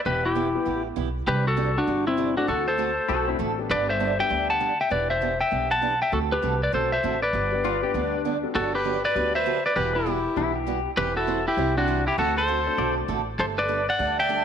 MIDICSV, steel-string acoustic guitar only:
0, 0, Header, 1, 2, 480
1, 0, Start_track
1, 0, Key_signature, 1, "major"
1, 0, Tempo, 303030
1, 84, Time_signature, 4, 2, 24, 8
1, 22882, End_track
2, 0, Start_track
2, 0, Title_t, "Steel-string acoustic guitar"
2, 0, Program_c, 0, 25
2, 80, Note_on_c, 0, 52, 53
2, 86, Note_on_c, 0, 59, 54
2, 91, Note_on_c, 0, 64, 62
2, 95, Note_on_c, 0, 67, 59
2, 407, Note_off_c, 0, 52, 0
2, 410, Note_off_c, 0, 59, 0
2, 412, Note_off_c, 0, 64, 0
2, 415, Note_off_c, 0, 67, 0
2, 555, Note_on_c, 0, 52, 75
2, 566, Note_on_c, 0, 59, 76
2, 572, Note_on_c, 0, 64, 64
2, 575, Note_on_c, 0, 67, 81
2, 740, Note_off_c, 0, 52, 0
2, 745, Note_off_c, 0, 59, 0
2, 749, Note_off_c, 0, 64, 0
2, 750, Note_off_c, 0, 67, 0
2, 1035, Note_on_c, 0, 52, 58
2, 1038, Note_on_c, 0, 59, 56
2, 1046, Note_on_c, 0, 64, 61
2, 1049, Note_on_c, 0, 67, 59
2, 1365, Note_off_c, 0, 52, 0
2, 1367, Note_off_c, 0, 59, 0
2, 1371, Note_off_c, 0, 64, 0
2, 1372, Note_off_c, 0, 67, 0
2, 1519, Note_on_c, 0, 52, 73
2, 1522, Note_on_c, 0, 59, 78
2, 1530, Note_on_c, 0, 64, 75
2, 1535, Note_on_c, 0, 67, 76
2, 1703, Note_off_c, 0, 52, 0
2, 1704, Note_off_c, 0, 59, 0
2, 1708, Note_off_c, 0, 64, 0
2, 1711, Note_off_c, 0, 67, 0
2, 2002, Note_on_c, 0, 48, 54
2, 2006, Note_on_c, 0, 55, 55
2, 2010, Note_on_c, 0, 60, 59
2, 2015, Note_on_c, 0, 62, 64
2, 2015, Note_on_c, 0, 67, 56
2, 2329, Note_off_c, 0, 48, 0
2, 2331, Note_off_c, 0, 55, 0
2, 2333, Note_off_c, 0, 60, 0
2, 2336, Note_off_c, 0, 62, 0
2, 2336, Note_off_c, 0, 67, 0
2, 2479, Note_on_c, 0, 48, 71
2, 2486, Note_on_c, 0, 55, 74
2, 2487, Note_on_c, 0, 60, 81
2, 2494, Note_on_c, 0, 62, 78
2, 2494, Note_on_c, 0, 67, 76
2, 2663, Note_off_c, 0, 48, 0
2, 2667, Note_off_c, 0, 55, 0
2, 2667, Note_off_c, 0, 60, 0
2, 2671, Note_off_c, 0, 62, 0
2, 2671, Note_off_c, 0, 67, 0
2, 2962, Note_on_c, 0, 48, 54
2, 2967, Note_on_c, 0, 55, 56
2, 2970, Note_on_c, 0, 60, 61
2, 2974, Note_on_c, 0, 62, 65
2, 2978, Note_on_c, 0, 67, 64
2, 3290, Note_off_c, 0, 48, 0
2, 3292, Note_off_c, 0, 55, 0
2, 3293, Note_off_c, 0, 60, 0
2, 3296, Note_off_c, 0, 62, 0
2, 3298, Note_off_c, 0, 67, 0
2, 3440, Note_on_c, 0, 48, 69
2, 3444, Note_on_c, 0, 55, 73
2, 3449, Note_on_c, 0, 60, 76
2, 3452, Note_on_c, 0, 62, 75
2, 3456, Note_on_c, 0, 67, 84
2, 3624, Note_off_c, 0, 48, 0
2, 3626, Note_off_c, 0, 55, 0
2, 3629, Note_off_c, 0, 60, 0
2, 3630, Note_off_c, 0, 62, 0
2, 3632, Note_off_c, 0, 67, 0
2, 3922, Note_on_c, 0, 50, 50
2, 3928, Note_on_c, 0, 57, 56
2, 3936, Note_on_c, 0, 60, 60
2, 3940, Note_on_c, 0, 66, 62
2, 3942, Note_on_c, 0, 69, 65
2, 4250, Note_off_c, 0, 50, 0
2, 4253, Note_off_c, 0, 57, 0
2, 4257, Note_off_c, 0, 60, 0
2, 4259, Note_off_c, 0, 66, 0
2, 4260, Note_off_c, 0, 69, 0
2, 4400, Note_on_c, 0, 50, 76
2, 4407, Note_on_c, 0, 57, 68
2, 4413, Note_on_c, 0, 60, 76
2, 4415, Note_on_c, 0, 66, 84
2, 4420, Note_on_c, 0, 69, 79
2, 4585, Note_off_c, 0, 50, 0
2, 4588, Note_off_c, 0, 57, 0
2, 4591, Note_off_c, 0, 60, 0
2, 4592, Note_off_c, 0, 66, 0
2, 4595, Note_off_c, 0, 69, 0
2, 4885, Note_on_c, 0, 50, 56
2, 4891, Note_on_c, 0, 57, 59
2, 4899, Note_on_c, 0, 60, 59
2, 4899, Note_on_c, 0, 66, 64
2, 4905, Note_on_c, 0, 69, 62
2, 5212, Note_off_c, 0, 50, 0
2, 5215, Note_off_c, 0, 57, 0
2, 5219, Note_off_c, 0, 60, 0
2, 5219, Note_off_c, 0, 66, 0
2, 5222, Note_off_c, 0, 69, 0
2, 5366, Note_on_c, 0, 50, 73
2, 5372, Note_on_c, 0, 57, 70
2, 5379, Note_on_c, 0, 60, 78
2, 5381, Note_on_c, 0, 66, 68
2, 5386, Note_on_c, 0, 69, 80
2, 5548, Note_off_c, 0, 50, 0
2, 5551, Note_off_c, 0, 57, 0
2, 5554, Note_off_c, 0, 60, 0
2, 5556, Note_off_c, 0, 66, 0
2, 5558, Note_off_c, 0, 69, 0
2, 5849, Note_on_c, 0, 50, 54
2, 5856, Note_on_c, 0, 55, 55
2, 5860, Note_on_c, 0, 59, 58
2, 5864, Note_on_c, 0, 62, 55
2, 5870, Note_on_c, 0, 67, 61
2, 6175, Note_off_c, 0, 50, 0
2, 6178, Note_off_c, 0, 55, 0
2, 6180, Note_off_c, 0, 59, 0
2, 6182, Note_off_c, 0, 62, 0
2, 6185, Note_off_c, 0, 67, 0
2, 6331, Note_on_c, 0, 50, 69
2, 6335, Note_on_c, 0, 55, 62
2, 6340, Note_on_c, 0, 59, 73
2, 6340, Note_on_c, 0, 62, 78
2, 6349, Note_on_c, 0, 67, 73
2, 6511, Note_off_c, 0, 50, 0
2, 6513, Note_off_c, 0, 55, 0
2, 6516, Note_off_c, 0, 59, 0
2, 6516, Note_off_c, 0, 62, 0
2, 6520, Note_off_c, 0, 67, 0
2, 6800, Note_on_c, 0, 50, 56
2, 6810, Note_on_c, 0, 55, 60
2, 6814, Note_on_c, 0, 59, 62
2, 6818, Note_on_c, 0, 62, 59
2, 6820, Note_on_c, 0, 67, 59
2, 7131, Note_off_c, 0, 50, 0
2, 7136, Note_off_c, 0, 55, 0
2, 7138, Note_off_c, 0, 59, 0
2, 7139, Note_off_c, 0, 62, 0
2, 7141, Note_off_c, 0, 67, 0
2, 7287, Note_on_c, 0, 50, 72
2, 7289, Note_on_c, 0, 55, 73
2, 7298, Note_on_c, 0, 59, 75
2, 7301, Note_on_c, 0, 62, 72
2, 7301, Note_on_c, 0, 67, 71
2, 7470, Note_off_c, 0, 50, 0
2, 7471, Note_off_c, 0, 55, 0
2, 7475, Note_off_c, 0, 59, 0
2, 7476, Note_off_c, 0, 67, 0
2, 7477, Note_off_c, 0, 62, 0
2, 7763, Note_on_c, 0, 52, 54
2, 7768, Note_on_c, 0, 59, 61
2, 7771, Note_on_c, 0, 62, 63
2, 7780, Note_on_c, 0, 67, 64
2, 8093, Note_off_c, 0, 52, 0
2, 8095, Note_off_c, 0, 59, 0
2, 8097, Note_off_c, 0, 62, 0
2, 8101, Note_off_c, 0, 67, 0
2, 8253, Note_on_c, 0, 52, 65
2, 8262, Note_on_c, 0, 59, 80
2, 8267, Note_on_c, 0, 62, 73
2, 8268, Note_on_c, 0, 67, 77
2, 8433, Note_off_c, 0, 52, 0
2, 8438, Note_off_c, 0, 59, 0
2, 8440, Note_off_c, 0, 62, 0
2, 8441, Note_off_c, 0, 67, 0
2, 8724, Note_on_c, 0, 52, 58
2, 8735, Note_on_c, 0, 59, 60
2, 8737, Note_on_c, 0, 62, 64
2, 8744, Note_on_c, 0, 67, 66
2, 9054, Note_off_c, 0, 52, 0
2, 9059, Note_off_c, 0, 59, 0
2, 9060, Note_off_c, 0, 62, 0
2, 9064, Note_off_c, 0, 67, 0
2, 9208, Note_on_c, 0, 52, 72
2, 9217, Note_on_c, 0, 59, 77
2, 9224, Note_on_c, 0, 62, 71
2, 9230, Note_on_c, 0, 67, 88
2, 9391, Note_off_c, 0, 52, 0
2, 9395, Note_off_c, 0, 59, 0
2, 9399, Note_off_c, 0, 62, 0
2, 9402, Note_off_c, 0, 67, 0
2, 9690, Note_on_c, 0, 50, 54
2, 9694, Note_on_c, 0, 57, 58
2, 9701, Note_on_c, 0, 60, 64
2, 9704, Note_on_c, 0, 66, 58
2, 9706, Note_on_c, 0, 69, 67
2, 10017, Note_off_c, 0, 50, 0
2, 10019, Note_off_c, 0, 57, 0
2, 10022, Note_off_c, 0, 60, 0
2, 10024, Note_off_c, 0, 66, 0
2, 10025, Note_off_c, 0, 69, 0
2, 10172, Note_on_c, 0, 50, 70
2, 10180, Note_on_c, 0, 57, 68
2, 10181, Note_on_c, 0, 60, 68
2, 10185, Note_on_c, 0, 66, 72
2, 10191, Note_on_c, 0, 69, 78
2, 10353, Note_off_c, 0, 50, 0
2, 10357, Note_off_c, 0, 57, 0
2, 10358, Note_off_c, 0, 60, 0
2, 10360, Note_off_c, 0, 66, 0
2, 10363, Note_off_c, 0, 69, 0
2, 10649, Note_on_c, 0, 50, 62
2, 10652, Note_on_c, 0, 57, 60
2, 10657, Note_on_c, 0, 60, 63
2, 10662, Note_on_c, 0, 66, 60
2, 10668, Note_on_c, 0, 69, 60
2, 10977, Note_off_c, 0, 50, 0
2, 10978, Note_off_c, 0, 57, 0
2, 10981, Note_off_c, 0, 60, 0
2, 10983, Note_off_c, 0, 66, 0
2, 10986, Note_off_c, 0, 69, 0
2, 11140, Note_on_c, 0, 50, 71
2, 11145, Note_on_c, 0, 57, 77
2, 11148, Note_on_c, 0, 60, 72
2, 11153, Note_on_c, 0, 66, 76
2, 11159, Note_on_c, 0, 69, 78
2, 11318, Note_off_c, 0, 50, 0
2, 11320, Note_off_c, 0, 57, 0
2, 11322, Note_off_c, 0, 60, 0
2, 11324, Note_off_c, 0, 66, 0
2, 11327, Note_off_c, 0, 69, 0
2, 11625, Note_on_c, 0, 50, 62
2, 11626, Note_on_c, 0, 55, 58
2, 11636, Note_on_c, 0, 59, 55
2, 11638, Note_on_c, 0, 62, 60
2, 11641, Note_on_c, 0, 67, 60
2, 11945, Note_off_c, 0, 50, 0
2, 11946, Note_off_c, 0, 55, 0
2, 11950, Note_off_c, 0, 59, 0
2, 11951, Note_off_c, 0, 62, 0
2, 11953, Note_off_c, 0, 67, 0
2, 12099, Note_on_c, 0, 50, 70
2, 12106, Note_on_c, 0, 55, 70
2, 12110, Note_on_c, 0, 59, 72
2, 12112, Note_on_c, 0, 62, 70
2, 12118, Note_on_c, 0, 67, 75
2, 12278, Note_off_c, 0, 50, 0
2, 12281, Note_off_c, 0, 55, 0
2, 12283, Note_off_c, 0, 59, 0
2, 12284, Note_off_c, 0, 62, 0
2, 12287, Note_off_c, 0, 67, 0
2, 12577, Note_on_c, 0, 50, 59
2, 12584, Note_on_c, 0, 55, 60
2, 12590, Note_on_c, 0, 59, 62
2, 12596, Note_on_c, 0, 67, 64
2, 12597, Note_on_c, 0, 62, 61
2, 12901, Note_off_c, 0, 50, 0
2, 12905, Note_off_c, 0, 55, 0
2, 12908, Note_off_c, 0, 59, 0
2, 12910, Note_off_c, 0, 67, 0
2, 12911, Note_off_c, 0, 62, 0
2, 13064, Note_on_c, 0, 50, 66
2, 13067, Note_on_c, 0, 55, 69
2, 13072, Note_on_c, 0, 59, 77
2, 13075, Note_on_c, 0, 62, 73
2, 13082, Note_on_c, 0, 67, 74
2, 13240, Note_off_c, 0, 50, 0
2, 13241, Note_off_c, 0, 55, 0
2, 13244, Note_off_c, 0, 59, 0
2, 13245, Note_off_c, 0, 62, 0
2, 13249, Note_off_c, 0, 67, 0
2, 13542, Note_on_c, 0, 50, 53
2, 13549, Note_on_c, 0, 54, 59
2, 13550, Note_on_c, 0, 59, 58
2, 13556, Note_on_c, 0, 62, 64
2, 13557, Note_on_c, 0, 67, 61
2, 13863, Note_off_c, 0, 50, 0
2, 13867, Note_off_c, 0, 54, 0
2, 13868, Note_off_c, 0, 59, 0
2, 13870, Note_off_c, 0, 62, 0
2, 13871, Note_off_c, 0, 67, 0
2, 14015, Note_on_c, 0, 50, 65
2, 14019, Note_on_c, 0, 54, 74
2, 14022, Note_on_c, 0, 59, 64
2, 14027, Note_on_c, 0, 62, 70
2, 14032, Note_on_c, 0, 67, 82
2, 14195, Note_off_c, 0, 50, 0
2, 14197, Note_off_c, 0, 54, 0
2, 14199, Note_off_c, 0, 59, 0
2, 14202, Note_off_c, 0, 62, 0
2, 14204, Note_off_c, 0, 67, 0
2, 14502, Note_on_c, 0, 50, 59
2, 14506, Note_on_c, 0, 54, 60
2, 14511, Note_on_c, 0, 59, 61
2, 14515, Note_on_c, 0, 62, 66
2, 14519, Note_on_c, 0, 67, 70
2, 14823, Note_off_c, 0, 50, 0
2, 14825, Note_off_c, 0, 54, 0
2, 14828, Note_off_c, 0, 59, 0
2, 14830, Note_off_c, 0, 62, 0
2, 14832, Note_off_c, 0, 67, 0
2, 14981, Note_on_c, 0, 50, 72
2, 14986, Note_on_c, 0, 54, 75
2, 14988, Note_on_c, 0, 59, 75
2, 14995, Note_on_c, 0, 62, 69
2, 15003, Note_on_c, 0, 67, 73
2, 15158, Note_off_c, 0, 50, 0
2, 15161, Note_off_c, 0, 54, 0
2, 15161, Note_off_c, 0, 59, 0
2, 15165, Note_off_c, 0, 62, 0
2, 15169, Note_off_c, 0, 67, 0
2, 15467, Note_on_c, 0, 52, 57
2, 15471, Note_on_c, 0, 55, 58
2, 15480, Note_on_c, 0, 59, 57
2, 15482, Note_on_c, 0, 66, 65
2, 15785, Note_off_c, 0, 52, 0
2, 15788, Note_off_c, 0, 55, 0
2, 15792, Note_off_c, 0, 59, 0
2, 15793, Note_off_c, 0, 66, 0
2, 15932, Note_on_c, 0, 52, 68
2, 15938, Note_on_c, 0, 55, 66
2, 15947, Note_on_c, 0, 59, 72
2, 15950, Note_on_c, 0, 66, 76
2, 16113, Note_off_c, 0, 52, 0
2, 16116, Note_off_c, 0, 55, 0
2, 16121, Note_off_c, 0, 59, 0
2, 16122, Note_off_c, 0, 66, 0
2, 16414, Note_on_c, 0, 52, 60
2, 16419, Note_on_c, 0, 55, 59
2, 16424, Note_on_c, 0, 59, 62
2, 16435, Note_on_c, 0, 66, 61
2, 16739, Note_off_c, 0, 52, 0
2, 16741, Note_off_c, 0, 55, 0
2, 16743, Note_off_c, 0, 59, 0
2, 16749, Note_off_c, 0, 66, 0
2, 16894, Note_on_c, 0, 52, 72
2, 16901, Note_on_c, 0, 55, 79
2, 16909, Note_on_c, 0, 59, 77
2, 16911, Note_on_c, 0, 66, 81
2, 17074, Note_off_c, 0, 52, 0
2, 17077, Note_off_c, 0, 55, 0
2, 17081, Note_off_c, 0, 59, 0
2, 17082, Note_off_c, 0, 66, 0
2, 17371, Note_on_c, 0, 52, 55
2, 17379, Note_on_c, 0, 55, 58
2, 17383, Note_on_c, 0, 60, 61
2, 17383, Note_on_c, 0, 64, 58
2, 17388, Note_on_c, 0, 72, 59
2, 17697, Note_off_c, 0, 52, 0
2, 17700, Note_off_c, 0, 55, 0
2, 17702, Note_off_c, 0, 60, 0
2, 17703, Note_off_c, 0, 64, 0
2, 17705, Note_off_c, 0, 72, 0
2, 17852, Note_on_c, 0, 52, 69
2, 17858, Note_on_c, 0, 55, 73
2, 17859, Note_on_c, 0, 60, 75
2, 17865, Note_on_c, 0, 64, 71
2, 17866, Note_on_c, 0, 72, 88
2, 18032, Note_off_c, 0, 52, 0
2, 18035, Note_off_c, 0, 55, 0
2, 18036, Note_off_c, 0, 60, 0
2, 18039, Note_off_c, 0, 64, 0
2, 18039, Note_off_c, 0, 72, 0
2, 18334, Note_on_c, 0, 52, 61
2, 18336, Note_on_c, 0, 55, 65
2, 18343, Note_on_c, 0, 60, 66
2, 18346, Note_on_c, 0, 64, 66
2, 18351, Note_on_c, 0, 72, 65
2, 18657, Note_off_c, 0, 52, 0
2, 18658, Note_off_c, 0, 55, 0
2, 18662, Note_off_c, 0, 60, 0
2, 18663, Note_off_c, 0, 64, 0
2, 18666, Note_off_c, 0, 72, 0
2, 18806, Note_on_c, 0, 52, 70
2, 18811, Note_on_c, 0, 55, 74
2, 18816, Note_on_c, 0, 60, 72
2, 18820, Note_on_c, 0, 64, 70
2, 18826, Note_on_c, 0, 72, 75
2, 18989, Note_off_c, 0, 52, 0
2, 18991, Note_off_c, 0, 55, 0
2, 18994, Note_off_c, 0, 60, 0
2, 18996, Note_off_c, 0, 64, 0
2, 18999, Note_off_c, 0, 72, 0
2, 19288, Note_on_c, 0, 50, 59
2, 19295, Note_on_c, 0, 57, 56
2, 19295, Note_on_c, 0, 60, 65
2, 19301, Note_on_c, 0, 66, 61
2, 19306, Note_on_c, 0, 69, 58
2, 19614, Note_off_c, 0, 50, 0
2, 19617, Note_off_c, 0, 57, 0
2, 19617, Note_off_c, 0, 60, 0
2, 19620, Note_off_c, 0, 66, 0
2, 19623, Note_off_c, 0, 69, 0
2, 19760, Note_on_c, 0, 50, 71
2, 19768, Note_on_c, 0, 57, 72
2, 19770, Note_on_c, 0, 60, 70
2, 19774, Note_on_c, 0, 66, 76
2, 19780, Note_on_c, 0, 69, 77
2, 19945, Note_off_c, 0, 50, 0
2, 19949, Note_off_c, 0, 57, 0
2, 19950, Note_off_c, 0, 60, 0
2, 19952, Note_off_c, 0, 66, 0
2, 19955, Note_off_c, 0, 69, 0
2, 20241, Note_on_c, 0, 50, 58
2, 20243, Note_on_c, 0, 57, 61
2, 20251, Note_on_c, 0, 66, 64
2, 20252, Note_on_c, 0, 60, 56
2, 20259, Note_on_c, 0, 69, 59
2, 20569, Note_off_c, 0, 50, 0
2, 20571, Note_off_c, 0, 57, 0
2, 20574, Note_off_c, 0, 66, 0
2, 20575, Note_off_c, 0, 60, 0
2, 20579, Note_off_c, 0, 69, 0
2, 20720, Note_on_c, 0, 50, 64
2, 20724, Note_on_c, 0, 57, 76
2, 20730, Note_on_c, 0, 60, 67
2, 20731, Note_on_c, 0, 66, 81
2, 20737, Note_on_c, 0, 69, 77
2, 20904, Note_off_c, 0, 50, 0
2, 20906, Note_off_c, 0, 57, 0
2, 20909, Note_off_c, 0, 60, 0
2, 20910, Note_off_c, 0, 66, 0
2, 20913, Note_off_c, 0, 69, 0
2, 21198, Note_on_c, 0, 55, 56
2, 21207, Note_on_c, 0, 57, 58
2, 21212, Note_on_c, 0, 62, 62
2, 21215, Note_on_c, 0, 69, 59
2, 21527, Note_off_c, 0, 55, 0
2, 21532, Note_off_c, 0, 57, 0
2, 21535, Note_off_c, 0, 62, 0
2, 21536, Note_off_c, 0, 69, 0
2, 21673, Note_on_c, 0, 55, 72
2, 21681, Note_on_c, 0, 57, 73
2, 21684, Note_on_c, 0, 62, 79
2, 21691, Note_on_c, 0, 69, 69
2, 21860, Note_off_c, 0, 55, 0
2, 21864, Note_off_c, 0, 57, 0
2, 21866, Note_off_c, 0, 62, 0
2, 21869, Note_off_c, 0, 69, 0
2, 22160, Note_on_c, 0, 55, 56
2, 22164, Note_on_c, 0, 57, 58
2, 22169, Note_on_c, 0, 62, 63
2, 22176, Note_on_c, 0, 69, 65
2, 22487, Note_off_c, 0, 55, 0
2, 22490, Note_off_c, 0, 57, 0
2, 22492, Note_off_c, 0, 62, 0
2, 22496, Note_off_c, 0, 69, 0
2, 22632, Note_on_c, 0, 55, 69
2, 22639, Note_on_c, 0, 57, 70
2, 22647, Note_on_c, 0, 62, 77
2, 22654, Note_on_c, 0, 69, 79
2, 22819, Note_off_c, 0, 55, 0
2, 22822, Note_off_c, 0, 57, 0
2, 22826, Note_off_c, 0, 62, 0
2, 22830, Note_off_c, 0, 69, 0
2, 22882, End_track
0, 0, End_of_file